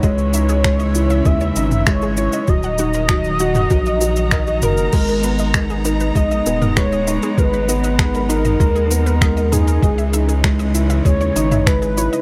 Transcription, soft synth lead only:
\new Staff \with { instrumentName = "Soft synth lead" } { \time 4/4 \key gis \minor \tempo 4 = 98 cis''2 e''4 cis''4 | dis''2.~ dis''8 ais'8~ | ais'4. r8 dis''4 cis''4 | b'4. ais'2 gis'8~ |
gis'4. r8 cis''4 b'4 | }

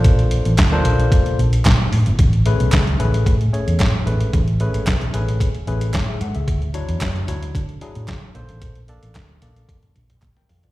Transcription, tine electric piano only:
\new Staff \with { instrumentName = "Tine electric piano" } { \time 4/4 \key a \major \tempo 4 = 112 << { r1 | r1 | r2. <e' cis''>16 <gis' e''>16 <a' fis''>16 <gis' e''>16~ | <gis' e''>16 r2. r8. |
r2. r16 <bes' g''>16 <a' f''>16 <f' d''>16 | } \\ { <bes d' f' a' c''>4 r16 <bes d' f' a' c''>4~ <bes d' f' a' c''>16 r4. | r8 <a cis' gis' b'>8. r16 <a cis' gis' b'>8. r16 <a cis' gis' cis''>8. r16 <a cis' gis' b'>8~ | <a cis' gis' b'>16 r16 <a cis' gis' b'>8. r16 <a cis' gis' b'>8. r16 <a cis' gis' b'>8. r8. | r8 <fis d' e' cis''>8. r16 <fis d' e' cis''>8. r16 <fis d' e' gis'>8. r16 <bes d' a' c''>8~ |
<bes d' a' c''>16 r16 <bes d' a' d''>8. r16 <bes d' a' d''>8. r4. r16 | } >> }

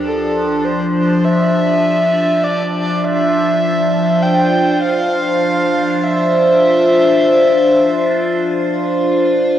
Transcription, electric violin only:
\new Staff \with { instrumentName = "Electric violin" } { \time 4/4 \key d \minor \tempo 4 = 50 a'8 c''8 e''4 d''8 e''4 g''8 | f''4 e''2 r4 | }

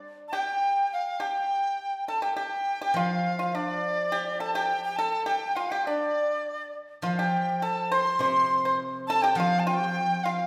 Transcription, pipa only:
\new Staff \with { instrumentName = "Pipa" } { \time 2/4 \tempo 4 = 103 r8 g'4. | g'4. a'16 g'16 | g'8. g'16 f'8. f'16 | d'4 g'8 a'16 g'16~ |
g'8 a'8 g'8 f'16 g'16 | d'4. r8 | f'16 g'8. a'8 c''8 | c''8. c''16 r8 a'16 g'16 |
f'8 g'4 f'8 | }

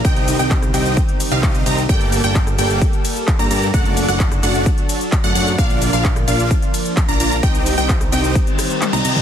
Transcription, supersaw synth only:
\new Staff \with { instrumentName = "Supersaw synth" } { \time 4/4 \key c \dorian \tempo 4 = 130 <c' ees' g' ees'' g''>8. <c' ees' g' ees'' g''>16 r8 <c' ees' g' ees'' g''>8 r8. <c' ees' g' ees'' f''>8. <c' ees' g' ees'' bes''>16 r16 | <bes g' a' d'' g''>8. <bes g' a' d'' g''>16 r8 <bes g' a' d'' g''>8 r4 r16 <bes g' a' d'' bes''>16 <bes g' a' d'' bes''>16 r16 | <a d' fis' d'' fis''>8. <a d' fis' d'' fis''>16 r8 <a d' fis' d'' fis''>8 r4 r16 <a d' fis' d'' fis''>16 <a d' fis' d'' fis''>16 r16 | <bes d' f' d'' f''>8. <bes d' f' d'' f''>16 r8 <bes d' f' d'' f''>8 r4 r16 <bes d' f' d'' bes''>16 <bes d' f' d'' bes''>16 r16 |
<c' ees' g' ees'' g''>8. <c' ees' g' ees'' g''>16 r8 <c' ees' g' ees'' g''>8 r4 r16 <c' ees' g' ees'' bes''>16 <c' ees' g' ees'' bes''>16 r16 | }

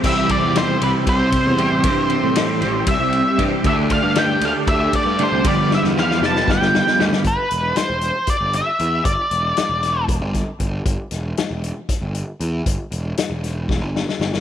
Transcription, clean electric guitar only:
\new Staff \with { instrumentName = "Clean electric guitar" } { \time 7/8 \key g \mixolydian \tempo 4 = 116 <c e g c' g'>8 <g c' g'>8 <e g c' g'>8 <g c' g'>4. <c e g c' g'>8 | <c e g c' g'>8 <g c' g'>8 <e g c' g'>8 <g c' g'>4. <c e g c' g'>8 | <d a d' g'>8 <a d' g'>8 <d a d' g'>8 <a d' g'>4. <d a d' g'>8 | <g, d f g b g'>8 <f g b g'>8 <f g b g'>8 <f g b g'>4. <g, d f g b g'>8 |
\key e \minor r2. r8 | r2. r8 | r2. r8 | r2. r8 | }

